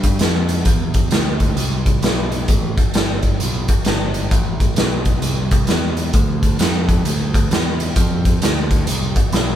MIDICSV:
0, 0, Header, 1, 4, 480
1, 0, Start_track
1, 0, Key_signature, 0, "minor"
1, 0, Tempo, 455927
1, 696, Time_signature, 4, 2, 24, 8
1, 10062, End_track
2, 0, Start_track
2, 0, Title_t, "Picked electric bass"
2, 0, Program_c, 0, 34
2, 0, Note_on_c, 0, 43, 73
2, 199, Note_off_c, 0, 43, 0
2, 217, Note_on_c, 0, 41, 84
2, 683, Note_off_c, 0, 41, 0
2, 691, Note_on_c, 0, 40, 78
2, 1160, Note_off_c, 0, 40, 0
2, 1177, Note_on_c, 0, 38, 77
2, 1643, Note_off_c, 0, 38, 0
2, 1650, Note_on_c, 0, 36, 70
2, 2120, Note_off_c, 0, 36, 0
2, 2135, Note_on_c, 0, 35, 76
2, 2603, Note_off_c, 0, 35, 0
2, 2619, Note_on_c, 0, 33, 78
2, 2903, Note_off_c, 0, 33, 0
2, 3106, Note_on_c, 0, 31, 80
2, 3570, Note_off_c, 0, 31, 0
2, 3582, Note_on_c, 0, 35, 69
2, 3866, Note_off_c, 0, 35, 0
2, 4069, Note_on_c, 0, 31, 91
2, 4532, Note_off_c, 0, 31, 0
2, 4541, Note_on_c, 0, 33, 77
2, 5008, Note_off_c, 0, 33, 0
2, 5023, Note_on_c, 0, 35, 85
2, 5489, Note_off_c, 0, 35, 0
2, 5499, Note_on_c, 0, 36, 76
2, 5967, Note_off_c, 0, 36, 0
2, 5979, Note_on_c, 0, 40, 79
2, 6447, Note_off_c, 0, 40, 0
2, 6463, Note_on_c, 0, 38, 77
2, 6929, Note_off_c, 0, 38, 0
2, 6943, Note_on_c, 0, 41, 81
2, 7408, Note_off_c, 0, 41, 0
2, 7425, Note_on_c, 0, 38, 78
2, 7888, Note_off_c, 0, 38, 0
2, 7909, Note_on_c, 0, 40, 79
2, 8370, Note_off_c, 0, 40, 0
2, 8385, Note_on_c, 0, 41, 82
2, 8847, Note_off_c, 0, 41, 0
2, 8870, Note_on_c, 0, 38, 80
2, 9329, Note_off_c, 0, 38, 0
2, 9346, Note_on_c, 0, 36, 76
2, 9625, Note_off_c, 0, 36, 0
2, 9820, Note_on_c, 0, 35, 85
2, 10062, Note_off_c, 0, 35, 0
2, 10062, End_track
3, 0, Start_track
3, 0, Title_t, "Muted picked electric bass strokes"
3, 2922, Note_on_c, 9, 29, 38
3, 3028, Note_off_c, 9, 29, 0
3, 3882, Note_on_c, 9, 29, 36
3, 3987, Note_off_c, 9, 29, 0
3, 9647, Note_on_c, 9, 29, 35
3, 9753, Note_off_c, 9, 29, 0
3, 10062, End_track
4, 0, Start_track
4, 0, Title_t, "Drums"
4, 37, Note_on_c, 9, 42, 67
4, 40, Note_on_c, 9, 36, 81
4, 142, Note_off_c, 9, 42, 0
4, 145, Note_off_c, 9, 36, 0
4, 202, Note_on_c, 9, 42, 77
4, 220, Note_on_c, 9, 38, 96
4, 307, Note_off_c, 9, 42, 0
4, 325, Note_off_c, 9, 38, 0
4, 512, Note_on_c, 9, 42, 55
4, 617, Note_off_c, 9, 42, 0
4, 686, Note_on_c, 9, 42, 73
4, 693, Note_on_c, 9, 36, 99
4, 792, Note_off_c, 9, 42, 0
4, 798, Note_off_c, 9, 36, 0
4, 989, Note_on_c, 9, 42, 62
4, 996, Note_on_c, 9, 36, 82
4, 1094, Note_off_c, 9, 42, 0
4, 1101, Note_off_c, 9, 36, 0
4, 1166, Note_on_c, 9, 42, 79
4, 1184, Note_on_c, 9, 38, 109
4, 1271, Note_off_c, 9, 42, 0
4, 1289, Note_off_c, 9, 38, 0
4, 1473, Note_on_c, 9, 42, 51
4, 1477, Note_on_c, 9, 36, 72
4, 1578, Note_off_c, 9, 42, 0
4, 1583, Note_off_c, 9, 36, 0
4, 1651, Note_on_c, 9, 42, 72
4, 1756, Note_off_c, 9, 42, 0
4, 1959, Note_on_c, 9, 42, 59
4, 1960, Note_on_c, 9, 36, 82
4, 2064, Note_off_c, 9, 42, 0
4, 2065, Note_off_c, 9, 36, 0
4, 2132, Note_on_c, 9, 42, 71
4, 2150, Note_on_c, 9, 38, 96
4, 2237, Note_off_c, 9, 42, 0
4, 2255, Note_off_c, 9, 38, 0
4, 2440, Note_on_c, 9, 42, 49
4, 2545, Note_off_c, 9, 42, 0
4, 2611, Note_on_c, 9, 42, 74
4, 2617, Note_on_c, 9, 36, 94
4, 2717, Note_off_c, 9, 42, 0
4, 2722, Note_off_c, 9, 36, 0
4, 2922, Note_on_c, 9, 36, 82
4, 2922, Note_on_c, 9, 42, 56
4, 3027, Note_off_c, 9, 42, 0
4, 3028, Note_off_c, 9, 36, 0
4, 3093, Note_on_c, 9, 42, 77
4, 3111, Note_on_c, 9, 38, 110
4, 3198, Note_off_c, 9, 42, 0
4, 3216, Note_off_c, 9, 38, 0
4, 3396, Note_on_c, 9, 42, 48
4, 3402, Note_on_c, 9, 36, 70
4, 3501, Note_off_c, 9, 42, 0
4, 3507, Note_off_c, 9, 36, 0
4, 3580, Note_on_c, 9, 42, 74
4, 3685, Note_off_c, 9, 42, 0
4, 3878, Note_on_c, 9, 42, 61
4, 3882, Note_on_c, 9, 36, 84
4, 3983, Note_off_c, 9, 42, 0
4, 3988, Note_off_c, 9, 36, 0
4, 4049, Note_on_c, 9, 42, 74
4, 4067, Note_on_c, 9, 38, 89
4, 4154, Note_off_c, 9, 42, 0
4, 4172, Note_off_c, 9, 38, 0
4, 4360, Note_on_c, 9, 42, 58
4, 4466, Note_off_c, 9, 42, 0
4, 4540, Note_on_c, 9, 42, 71
4, 4541, Note_on_c, 9, 36, 92
4, 4645, Note_off_c, 9, 42, 0
4, 4646, Note_off_c, 9, 36, 0
4, 4846, Note_on_c, 9, 36, 85
4, 4846, Note_on_c, 9, 42, 56
4, 4951, Note_off_c, 9, 36, 0
4, 4952, Note_off_c, 9, 42, 0
4, 5014, Note_on_c, 9, 42, 83
4, 5032, Note_on_c, 9, 38, 116
4, 5120, Note_off_c, 9, 42, 0
4, 5138, Note_off_c, 9, 38, 0
4, 5319, Note_on_c, 9, 42, 55
4, 5325, Note_on_c, 9, 36, 75
4, 5424, Note_off_c, 9, 42, 0
4, 5430, Note_off_c, 9, 36, 0
4, 5496, Note_on_c, 9, 42, 80
4, 5602, Note_off_c, 9, 42, 0
4, 5803, Note_on_c, 9, 42, 62
4, 5807, Note_on_c, 9, 36, 83
4, 5908, Note_off_c, 9, 42, 0
4, 5912, Note_off_c, 9, 36, 0
4, 5970, Note_on_c, 9, 42, 66
4, 5987, Note_on_c, 9, 38, 94
4, 6075, Note_off_c, 9, 42, 0
4, 6093, Note_off_c, 9, 38, 0
4, 6284, Note_on_c, 9, 42, 51
4, 6389, Note_off_c, 9, 42, 0
4, 6457, Note_on_c, 9, 42, 73
4, 6462, Note_on_c, 9, 36, 102
4, 6562, Note_off_c, 9, 42, 0
4, 6567, Note_off_c, 9, 36, 0
4, 6767, Note_on_c, 9, 42, 59
4, 6768, Note_on_c, 9, 36, 74
4, 6872, Note_off_c, 9, 42, 0
4, 6873, Note_off_c, 9, 36, 0
4, 6939, Note_on_c, 9, 42, 85
4, 6957, Note_on_c, 9, 38, 107
4, 7044, Note_off_c, 9, 42, 0
4, 7062, Note_off_c, 9, 38, 0
4, 7251, Note_on_c, 9, 36, 79
4, 7252, Note_on_c, 9, 42, 53
4, 7356, Note_off_c, 9, 36, 0
4, 7357, Note_off_c, 9, 42, 0
4, 7425, Note_on_c, 9, 42, 76
4, 7530, Note_off_c, 9, 42, 0
4, 7732, Note_on_c, 9, 36, 84
4, 7737, Note_on_c, 9, 42, 61
4, 7837, Note_off_c, 9, 36, 0
4, 7842, Note_off_c, 9, 42, 0
4, 7909, Note_on_c, 9, 42, 73
4, 7927, Note_on_c, 9, 38, 100
4, 8014, Note_off_c, 9, 42, 0
4, 8032, Note_off_c, 9, 38, 0
4, 8211, Note_on_c, 9, 42, 59
4, 8316, Note_off_c, 9, 42, 0
4, 8379, Note_on_c, 9, 42, 77
4, 8382, Note_on_c, 9, 36, 92
4, 8485, Note_off_c, 9, 42, 0
4, 8488, Note_off_c, 9, 36, 0
4, 8689, Note_on_c, 9, 36, 78
4, 8689, Note_on_c, 9, 42, 59
4, 8794, Note_off_c, 9, 36, 0
4, 8794, Note_off_c, 9, 42, 0
4, 8862, Note_on_c, 9, 42, 88
4, 8880, Note_on_c, 9, 38, 115
4, 8967, Note_off_c, 9, 42, 0
4, 8985, Note_off_c, 9, 38, 0
4, 9167, Note_on_c, 9, 36, 79
4, 9167, Note_on_c, 9, 42, 57
4, 9272, Note_off_c, 9, 36, 0
4, 9272, Note_off_c, 9, 42, 0
4, 9338, Note_on_c, 9, 42, 86
4, 9444, Note_off_c, 9, 42, 0
4, 9641, Note_on_c, 9, 42, 60
4, 9644, Note_on_c, 9, 36, 87
4, 9746, Note_off_c, 9, 42, 0
4, 9749, Note_off_c, 9, 36, 0
4, 9817, Note_on_c, 9, 42, 68
4, 9835, Note_on_c, 9, 38, 90
4, 9923, Note_off_c, 9, 42, 0
4, 9941, Note_off_c, 9, 38, 0
4, 10062, End_track
0, 0, End_of_file